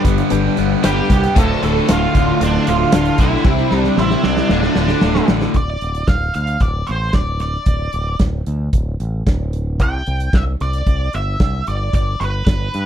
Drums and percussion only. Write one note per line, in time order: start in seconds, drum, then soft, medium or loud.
0.05 kick loud
0.05 closed hi-hat loud
0.18 snare soft
0.18 closed hi-hat medium
0.30 closed hi-hat loud
0.57 closed hi-hat medium
0.84 snare loud
0.84 closed hi-hat loud
1.10 kick loud
1.10 closed hi-hat medium
1.24 closed hi-hat medium
1.36 kick loud
1.36 closed hi-hat loud
1.63 closed hi-hat medium
1.89 snare loud
1.89 closed hi-hat loud
2.15 kick medium
2.15 closed hi-hat medium
2.41 closed hi-hat loud
2.67 closed hi-hat medium
2.92 snare loud
2.92 closed hi-hat loud
3.05 closed hi-hat soft
3.18 kick loud
3.18 closed hi-hat medium
3.44 kick loud
3.44 snare medium
3.58 snare medium
3.71 snare medium
3.84 snare medium
3.98 snare medium
4.11 snare medium
4.24 snare medium
4.37 snare medium
4.49 snare medium
4.63 snare medium
4.75 snare medium
4.88 snare medium
5.01 snare loud
5.15 snare medium
5.28 snare loud
5.41 snare loud
5.54 kick medium
5.54 closed hi-hat medium
5.81 closed hi-hat soft
5.95 closed hi-hat soft
6.07 kick medium
6.07 snare medium
6.07 closed hi-hat soft
6.34 closed hi-hat medium
6.47 closed hi-hat soft
6.60 kick medium
6.60 closed hi-hat medium
6.87 closed hi-hat soft
7.13 kick medium
7.13 snare medium
7.13 closed hi-hat soft
7.40 snare soft
7.40 closed hi-hat medium
7.66 kick medium
7.66 closed hi-hat medium
7.93 closed hi-hat soft
8.19 kick medium
8.19 snare loud
8.19 closed hi-hat medium
8.46 closed hi-hat medium
8.73 kick medium
8.73 closed hi-hat medium
9.00 closed hi-hat soft
9.27 kick medium
9.27 snare medium
9.27 closed hi-hat medium
9.53 closed hi-hat medium
9.80 kick medium
9.80 closed hi-hat medium
10.07 closed hi-hat medium
10.20 closed hi-hat medium
10.33 kick loud
10.33 snare medium
10.33 closed hi-hat soft
10.60 closed hi-hat soft
10.73 closed hi-hat medium
10.87 kick medium
10.87 closed hi-hat medium
11.13 closed hi-hat soft
11.40 kick loud
11.40 snare medium
11.40 closed hi-hat soft
11.67 closed hi-hat medium
11.93 kick medium
11.93 closed hi-hat medium
12.21 closed hi-hat medium
12.47 kick loud
12.47 snare loud
12.47 closed hi-hat medium
12.74 closed hi-hat medium